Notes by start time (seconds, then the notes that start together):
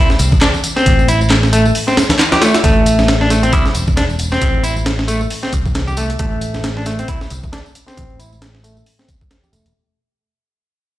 0.10 snare, tambourine
0.19 C2, closed hi-hat, tambourine
0.32 kick, low conga
0.41 D4, snare, clap, closed hi-hat, tambourine
0.54 tambourine, low conga
0.64 closed hi-hat, tambourine
0.76 C4, snare, tambourine
0.86 A1, kick, closed hi-hat, tambourine, low conga
0.99 tambourine, high conga
1.08 E4, closed hi-hat, tambourine
1.21 tambourine, high conga
1.30 snare, clap, closed hi-hat, tambourine
1.43 snare, tambourine
1.53 A3, closed hi-hat, tambourine
1.65 tambourine, high conga
1.75 open hi-hat, tambourine
1.88 C4, snare, tambourine
1.97 snare, closed hi-hat, tambourine, high conga
2.09 snare, closed hi-hat, tambourine, low conga
2.19 snare, clap, closed hi-hat, tambourine
2.32 G4, snare, closed hi-hat, tambourine, low conga
2.41 A3, snare, closed hi-hat, tambourine
2.54 snare, closed hi-hat
2.64 A1 A3, kick, closed hi-hat, tambourine
2.76 high conga
2.86 closed hi-hat, tambourine
2.99 snare, tambourine, high conga
3.08 snare, closed hi-hat, tambourine
3.21 D4, snare
3.30 A3, snare, closed hi-hat, tambourine
3.43 C4, closed hi-hat, tambourine, high conga
3.52 C2 E4, kick, closed hi-hat, tambourine
3.65 snare, tambourine
3.75 E1, closed hi-hat, tambourine
3.87 kick, tambourine, low conga
3.97 D4, snare, closed hi-hat, tambourine
4.10 tambourine
4.19 closed hi-hat, tambourine
4.32 C4, snare, tambourine
4.41 A1, kick, closed hi-hat, tambourine, low conga
4.55 high conga
4.63 E4, closed hi-hat, tambourine
4.76 tambourine, high conga
4.86 snare, closed hi-hat, tambourine
4.99 snare
5.08 A3, closed hi-hat, tambourine
5.21 tambourine, high conga
5.30 open hi-hat, tambourine
5.43 C4, snare, tambourine
5.53 C2, kick, closed hi-hat, tambourine
5.65 kick, tambourine, low conga
5.75 snare, closed hi-hat, tambourine
5.87 G4, tambourine, low conga
5.97 A3, closed hi-hat, tambourine
6.10 closed hi-hat, tambourine
6.19 A1 A3, kick, closed hi-hat, tambourine
6.33 high conga
6.41 closed hi-hat, tambourine
6.54 snare, tambourine, high conga
6.64 snare, closed hi-hat, tambourine
6.77 D4, snare
6.86 A3, snare, closed hi-hat, tambourine
6.99 C4, closed hi-hat, tambourine, high conga
7.08 E4, kick, closed hi-hat, tambourine
7.21 snare, tambourine
7.30 C2, closed hi-hat, tambourine
7.43 kick, tambourine, low conga
7.52 D4, snare, closed hi-hat, tambourine
7.66 tambourine
7.75 closed hi-hat, tambourine
7.87 C4, snare, tambourine
7.97 A1, kick, closed hi-hat, tambourine, low conga
8.10 high conga
8.19 E4, closed hi-hat, tambourine
8.32 tambourine, high conga
8.42 snare, closed hi-hat, tambourine
8.55 snare
8.64 A3, closed hi-hat, tambourine
8.77 tambourine, high conga
8.86 open hi-hat, tambourine
8.99 C4, snare, tambourine
9.08 kick, closed hi-hat, tambourine
9.21 kick, tambourine, low conga
9.31 snare, closed hi-hat, tambourine
9.43 G4, tambourine, low conga
9.52 E1 A3, closed hi-hat, tambourine
9.66 E1, closed hi-hat, tambourine